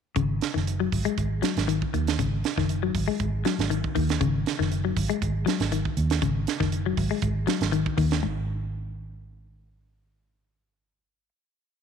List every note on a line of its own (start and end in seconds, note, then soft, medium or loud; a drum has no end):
0.16 0.38 G#1 loud
0.16 0.38 C#3 medium
0.16 kick medium
0.16 closed hi-hat medium
0.41 snare medium
0.41 closed hi-hat soft
0.54 0.88 F#1 medium
0.54 0.76 D#3 medium
0.54 snare soft
0.67 closed hi-hat medium
0.80 1.02 F#3 medium
0.92 1.04 G#1 medium
0.92 kick medium
0.92 open hi-hat medium
1.05 1.27 G#3 medium
1.05 closed hi-hat soft
1.18 1.40 G#1 medium
1.18 kick medium
1.18 closed hi-hat medium
1.42 1.64 F#3 medium
1.42 snare medium
1.42 closed hi-hat soft
1.57 1.79 G#1 medium
1.57 snare medium
1.57 closed hi-hat soft
1.68 1.90 D#3 medium
1.68 closed hi-hat medium
1.82 kick medium
1.94 2.16 D#2 medium
1.94 2.15 D#3 medium
1.94 closed hi-hat soft
2.07 snare medium
2.07 closed hi-hat medium
2.19 2.41 G#1 loud
2.19 2.40 C#3 medium
2.19 kick medium
2.19 closed hi-hat medium
2.44 snare medium
2.44 closed hi-hat soft
2.57 2.90 F#1 medium
2.57 2.79 D#3 medium
2.57 kick medium
2.57 snare soft
2.69 closed hi-hat medium
2.83 3.04 F#3 medium
2.95 3.06 G#1 medium
2.95 kick medium
2.95 open hi-hat medium
3.08 3.29 G#3 medium
3.20 3.42 G#1 medium
3.20 kick medium
3.20 closed hi-hat medium
3.45 3.67 F#3 medium
3.45 snare medium
3.45 closed hi-hat soft
3.59 3.81 G#1 medium
3.59 snare medium
3.59 closed hi-hat soft
3.70 3.92 D#3 medium
3.70 closed hi-hat medium
3.84 kick medium
3.95 4.18 D#2 medium
3.95 4.17 D#3 medium
3.95 kick medium
3.95 open hi-hat medium
4.09 snare medium
4.09 closed hi-hat soft
4.21 4.43 G#1 loud
4.21 4.42 C#3 medium
4.21 kick medium
4.21 closed hi-hat medium
4.46 snare medium
4.46 closed hi-hat soft
4.59 4.92 F#1 medium
4.59 4.81 D#3 medium
4.59 snare soft
4.72 closed hi-hat medium
4.85 5.06 F#3 medium
4.97 5.08 G#1 medium
4.97 kick medium
4.97 open hi-hat medium
5.10 5.31 G#3 medium
5.10 closed hi-hat soft
5.22 5.44 G#1 medium
5.22 kick medium
5.22 closed hi-hat medium
5.46 5.68 F#3 medium
5.46 snare medium
5.46 closed hi-hat soft
5.60 5.82 G#1 medium
5.60 snare medium
5.60 closed hi-hat soft
5.72 5.93 D#3 medium
5.72 closed hi-hat medium
5.85 kick medium
5.97 6.19 D#2 medium
5.97 closed hi-hat medium
6.10 snare medium
6.10 closed hi-hat medium
6.22 6.44 G#1 loud
6.22 6.43 C#3 medium
6.22 kick medium
6.22 closed hi-hat medium
6.47 snare medium
6.47 closed hi-hat medium
6.60 6.93 F#1 medium
6.60 6.82 D#3 medium
6.60 kick medium
6.60 snare soft
6.72 closed hi-hat medium
6.86 7.07 F#3 medium
6.97 7.09 G#1 medium
6.97 kick medium
6.97 open hi-hat medium
7.11 7.32 G#3 medium
7.22 7.44 G#1 medium
7.22 kick medium
7.22 closed hi-hat medium
7.47 7.69 F#3 medium
7.47 snare medium
7.47 closed hi-hat soft
7.61 7.83 G#1 medium
7.61 snare medium
7.61 closed hi-hat soft
7.72 7.94 D#3 medium
7.72 closed hi-hat medium
7.86 kick medium
7.98 8.20 D#2 medium
7.98 8.19 D#3 medium
7.98 kick medium
7.98 open hi-hat medium
8.11 snare medium
8.11 closed hi-hat medium
8.23 11.28 G#1 loud
8.23 8.38 G#2 medium